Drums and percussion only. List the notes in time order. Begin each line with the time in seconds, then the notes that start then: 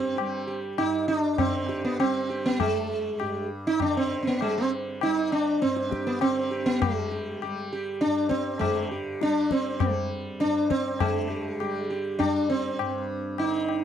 0.18 tabla na
0.78 tabla na
1.38 tabla na, tabla ge
1.69 tabla te
2.00 tabla na
2.60 tabla na, tabla ge
3.20 tabla na
3.80 tabla na, tabla ge
4.41 tabla na
5.01 tabla na
5.32 tabla na
5.62 tabla te
5.76 tabla te
5.92 tabla ke
6.07 tabla te
6.21 tabla na
6.82 tabla na, tabla ge
7.42 tabla na
8.02 tabla te
8.31 tabla ke
8.61 tabla na, tabla ge
9.21 tabla te
9.51 tabla ke
9.80 tabla na, tabla ge
10.40 tabla te
10.71 tabla ke
11.00 tabla na, tabla ge
11.60 tabla na
12.20 tabla na, tabla ge
12.79 tabla na
13.38 tabla na
13.69 tabla na